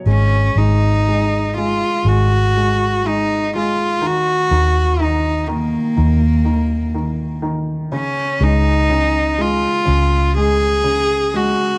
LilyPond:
<<
  \new Staff \with { instrumentName = "Cello" } { \time 4/4 \key gis \dorian \tempo 4 = 61 cis'8 dis'4 eis'8 fis'4 dis'8 eis'8 | fis'4 dis'8 ais2 r8 | cis'8 dis'4 eis'4 gis'4 fis'8 | }
  \new Staff \with { instrumentName = "Upright piano" } { \clef bass \time 4/4 \key gis \dorian gis8 gis8 gis8 gis8 gis8 gis8 gis8 gis8 | dis8 dis8 dis8 dis8 dis8 dis8 dis8 dis8 | cis8 gis8 cis8 gis8 cis8 gis8 cis8 gis8 | }
  \new Staff \with { instrumentName = "Fingered electric bass" } { \clef bass \time 4/4 \key gis \dorian gis,,8 gis,,4. gis,,2 | dis,8 dis,4. dis,2 | cis,8 cis,4. cis,2 | }
>>